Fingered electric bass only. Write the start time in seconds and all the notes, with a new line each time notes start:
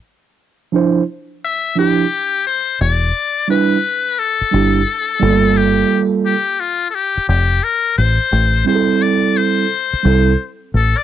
2.81 E1
4.41 muted fingered electric bass stroke
4.54 G1
5.22 G1
7.17 muted fingered electric bass stroke
7.29 F1
7.98 A1
8.32 A1
9.93 muted fingered electric bass stroke
10.05 C2
10.74 A1